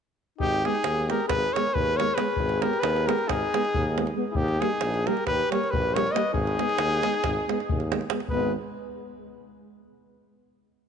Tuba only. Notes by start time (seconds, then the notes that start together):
0.39 G#1
0.85 D#2
1.31 G#1
1.75 D#2
2.38 G#1
2.83 D#2
3.28 G#1
3.75 D#2
4.36 D#2
4.82 A#1
5.28 D#2
5.73 A#1
6.33 G#1
6.79 D#2
7.25 G#1
7.71 D#2
8.32 G#1